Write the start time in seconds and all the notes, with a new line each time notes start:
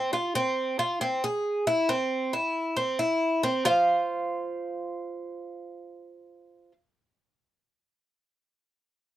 Already playing: C4
0.13 F4
0.35 C4
0.79 F4
1.01 C4
1.24 G#4
1.67 E4
1.89 C4
2.33 E4
2.77 C4
2.99 E4
3.43 C4
3.65 F4 C5 F5